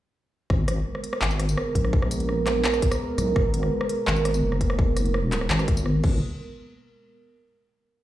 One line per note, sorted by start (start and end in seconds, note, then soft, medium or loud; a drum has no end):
0.50 0.84 G#1 loud
0.50 6.00 G#3 medium
0.50 6.00 B3 medium
0.50 6.00 A#4 medium
0.50 kick loud
0.50 cross-stick medium
0.68 cross-stick medium
0.68 closed hi-hat medium
0.95 cross-stick medium
1.04 closed hi-hat medium
1.13 cross-stick medium
1.22 1.56 G#1 loud
1.22 clap loud
1.31 tambourine soft
1.40 cross-stick medium
1.40 closed hi-hat medium
1.49 tambourine medium
1.58 cross-stick medium
1.75 2.81 A#1 loud
1.75 kick medium
1.75 closed hi-hat medium
1.85 cross-stick medium
1.93 kick loud
2.02 cross-stick medium
2.11 closed hi-hat medium
2.11 tambourine medium
2.20 closed hi-hat soft
2.29 cross-stick medium
2.47 cross-stick medium
2.47 clap medium
2.47 closed hi-hat medium
2.64 clap loud
2.74 cross-stick medium
2.74 tambourine soft
2.82 kick loud
2.82 closed hi-hat medium
2.91 cross-stick medium
2.91 tambourine medium
3.18 3.34 B1 loud
3.18 cross-stick medium
3.18 closed hi-hat medium
3.18 tambourine medium
3.36 3.70 G#1 loud
3.36 kick loud
3.36 cross-stick medium
3.54 closed hi-hat medium
3.63 cross-stick medium
3.81 cross-stick medium
3.89 closed hi-hat medium
4.07 4.42 G#1 loud
4.07 cross-stick medium
4.07 clap loud
4.16 tambourine soft
4.25 cross-stick medium
4.25 closed hi-hat medium
4.34 tambourine medium
4.43 5.49 F#1 loud
4.52 cross-stick medium
4.61 kick medium
4.61 closed hi-hat medium
4.70 cross-stick medium
4.79 kick loud
4.97 cross-stick medium
4.97 closed hi-hat medium
4.97 tambourine medium
5.06 closed hi-hat soft
5.14 cross-stick medium
5.32 clap medium
5.32 closed hi-hat medium
5.41 cross-stick medium
5.50 6.02 G#1 loud
5.50 clap loud
5.59 cross-stick medium
5.59 tambourine soft
5.68 kick loud
5.68 closed hi-hat medium
5.77 tambourine medium
5.86 cross-stick medium
6.04 6.20 G#1 loud
6.04 kick loud
6.04 crash medium